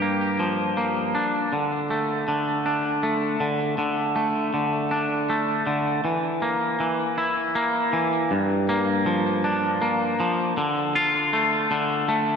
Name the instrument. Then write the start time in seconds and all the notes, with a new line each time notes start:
clean electric guitar
Already playing: G2 G4
0.02 A#3
0.39 F3
0.77 A#3
1.15 D4
1.53 D3
1.90 A3
2.28 D3
2.66 D4
3.03 A3
3.40 D3
3.78 D3
4.16 A3
4.54 D3
4.91 D4
5.30 A3
5.67 D3
6.05 E3
6.42 A#3
6.80 E3
7.18 E4
7.55 A#3
7.93 E3
8.31 G2
8.69 A#3
9.06 F3
9.44 D4
9.82 A#3
10.20 F3
10.57 D3
10.95 F4
11.33 A3
11.71 D3
12.08 A3